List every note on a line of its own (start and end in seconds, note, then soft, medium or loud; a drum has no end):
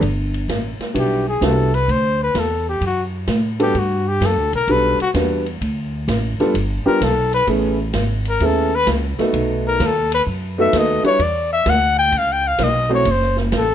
0.01 0.47 G1 medium
0.01 kick soft
0.01 ride medium
0.34 ride medium
0.48 0.78 A1 medium
0.48 kick soft
0.48 snare medium
0.48 hi-hat pedal medium
0.48 ride medium
0.79 muted upright bass stroke soft
0.79 snare medium
0.79 ride soft
0.94 1.40 B1 medium
0.94 1.23 G3 medium
0.94 1.23 B3 medium
0.94 1.23 D4 medium
0.94 1.23 E4 medium
0.94 1.23 F#4 medium
0.94 kick soft
0.94 ride medium
1.00 1.27 G4 medium
1.29 1.47 G#4 medium
1.41 1.87 C2 medium
1.41 1.70 G3 medium
1.41 1.70 B3 medium
1.41 1.70 D4 medium
1.41 1.70 E4 medium
1.41 1.70 F#4 medium
1.41 kick soft
1.41 snare medium
1.41 hi-hat pedal medium
1.41 ride medium
1.46 1.76 A4 medium
1.74 1.93 B4 loud
1.74 ride soft
1.88 2.34 D2 medium
1.88 2.22 C5 medium
1.88 kick soft
1.88 ride medium
2.23 2.41 B4 medium
2.35 2.80 E2 medium
2.35 kick soft
2.35 snare medium
2.35 hi-hat pedal medium
2.35 ride medium
2.39 2.68 A4 medium
2.69 2.82 G4 medium
2.81 3.26 F#2 medium
2.81 kick soft
2.81 ride medium
2.87 3.04 F#4 medium
3.27 3.73 A2 medium
3.27 kick soft
3.27 snare medium
3.27 hi-hat pedal medium
3.27 ride medium
3.60 3.73 G3 medium
3.60 3.73 B3 medium
3.60 3.73 D4 medium
3.60 3.74 F#4 medium
3.60 3.80 G4 loud
3.60 3.73 A4 medium
3.60 ride medium
3.75 4.20 G2 medium
3.75 kick soft
3.75 ride medium
3.79 4.10 F#4 medium
4.08 4.27 G4 loud
4.21 4.37 F#2 medium
4.21 kick soft
4.21 snare medium
4.21 hi-hat pedal medium
4.21 ride medium
4.26 4.55 A4 medium
4.37 4.52 D2 medium
4.53 4.67 B1 medium
4.53 4.73 A#4 loud
4.53 ride medium
4.67 4.97 B1 medium
4.67 4.97 G3 medium
4.67 4.97 B3 medium
4.67 4.97 D4 medium
4.67 4.97 F#4 medium
4.67 4.97 A4 medium
4.67 kick soft
4.67 ride medium
4.72 5.01 B4 loud
5.00 5.10 F#4 loud
5.00 muted upright bass stroke soft
5.00 ride medium
5.14 5.60 E2 medium
5.14 5.44 G3 medium
5.14 5.43 B3 medium
5.14 5.43 D4 medium
5.14 5.44 F#4 medium
5.14 5.44 B4 medium
5.14 kick soft
5.14 snare medium
5.14 hi-hat pedal medium
5.14 ride medium
5.46 ride medium
5.61 6.07 D2 medium
5.61 kick soft
5.61 ride medium
6.08 6.37 A1 medium
6.08 kick soft
6.08 snare medium
6.08 hi-hat pedal medium
6.08 ride medium
6.39 6.53 G3 medium
6.39 6.53 B3 medium
6.39 6.53 D4 medium
6.39 6.54 F4 medium
6.39 6.54 A4 medium
6.39 muted upright bass stroke soft
6.39 snare soft
6.39 ride soft
6.54 6.84 G1 medium
6.54 kick soft
6.54 ride medium
6.86 6.99 G3 medium
6.86 6.99 B3 medium
6.86 7.00 D4 medium
6.86 7.00 F4 medium
6.86 7.00 G4 medium
6.86 7.06 A#4 loud
6.86 muted upright bass stroke soft
7.01 7.46 B1 medium
7.01 7.34 A4 medium
7.01 kick soft
7.01 snare medium
7.01 hi-hat pedal medium
7.01 ride medium
7.33 7.47 B4 loud
7.33 ride medium
7.47 7.93 A1 medium
7.47 7.76 A3 medium
7.47 7.76 B3 medium
7.47 7.77 C#4 medium
7.47 7.77 E4 medium
7.47 7.76 G#4 medium
7.47 kick soft
7.47 ride medium
7.93 8.39 G#1 medium
7.93 kick soft
7.93 snare medium
7.93 hi-hat pedal medium
7.93 ride medium
8.25 ride medium
8.29 8.47 A#4 loud
8.40 8.86 D#2 medium
8.40 8.70 A3 medium
8.40 8.70 B3 medium
8.40 8.70 C#4 medium
8.40 8.70 E4 medium
8.40 8.70 G#4 medium
8.40 kick soft
8.40 ride medium
8.45 8.77 A4 loud
8.75 8.89 B4 loud
8.87 9.16 C#2 medium
8.87 kick soft
8.87 snare medium
8.87 hi-hat pedal medium
8.87 ride medium
9.19 9.77 A3 medium
9.19 9.77 B3 medium
9.19 9.78 D#4 medium
9.19 9.78 F#4 medium
9.19 9.78 A4 medium
9.19 muted upright bass stroke soft
9.19 snare medium
9.19 ride medium
9.33 9.79 B1 medium
9.33 kick soft
9.33 ride medium
9.67 9.88 A#4 loud
9.80 10.25 D#2 loud
9.80 kick soft
9.80 snare medium
9.80 hi-hat pedal medium
9.80 ride medium
9.86 10.14 A4 loud
10.12 10.23 B4 loud
10.12 ride medium
10.26 10.72 F#2 medium
10.26 kick soft
10.58 11.02 A3 medium
10.58 11.02 B3 medium
10.58 11.02 D#4 medium
10.58 11.02 F#4 medium
10.58 11.02 A4 medium
10.58 10.80 E5 loud
10.73 11.02 D#2 loud
10.73 kick soft
10.73 snare medium
10.73 hi-hat pedal medium
10.73 ride medium
10.78 11.06 D#5 loud
11.04 11.18 G3 medium
11.04 11.18 D4 medium
11.04 11.18 E4 medium
11.04 11.18 F#4 medium
11.04 11.18 B4 medium
11.04 11.24 C#5 loud
11.04 muted upright bass stroke soft
11.04 ride medium
11.19 11.65 E2 medium
11.19 11.52 D5 medium
11.19 kick soft
11.19 ride medium
11.53 11.71 E5 loud
11.66 12.11 D2 loud
11.66 11.98 F#5 loud
11.66 kick soft
11.66 snare medium
11.66 hi-hat pedal medium
11.66 ride medium
11.99 12.20 G5 loud
12.12 12.58 C#2 medium
12.12 kick soft
12.12 ride medium
12.18 12.34 F5 loud
12.33 12.49 G5 loud
12.48 12.65 F5 loud
12.58 13.04 B1 medium
12.58 kick soft
12.58 snare medium
12.58 hi-hat pedal medium
12.58 ride medium
12.63 12.93 D#5 loud
12.89 13.04 A3 medium
12.89 13.04 C4 medium
12.89 13.04 E4 medium
12.89 13.04 F#4 medium
12.89 13.04 C5 medium
12.95 13.13 C#5 loud
13.05 13.51 F#1 medium
13.05 kick soft
13.05 ride medium
13.11 13.39 C5 medium
13.21 snare soft
13.37 13.56 E4 medium
13.37 snare medium
13.52 13.75 A1 medium
13.52 kick soft
13.52 snare medium
13.52 hi-hat pedal medium
13.52 ride medium
13.57 13.75 A4 loud